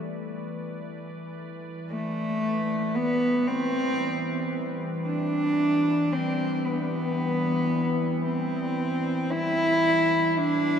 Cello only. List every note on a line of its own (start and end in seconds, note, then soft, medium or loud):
1.90 2.97 A3 medium
2.95 3.49 B3 medium
3.48 4.53 C4 loud
5.05 6.15 D4 medium
6.13 6.66 C4 medium
6.65 8.24 B3 medium
8.24 9.32 C4 medium
9.30 10.39 E4 loud
10.37 10.79 D4 loud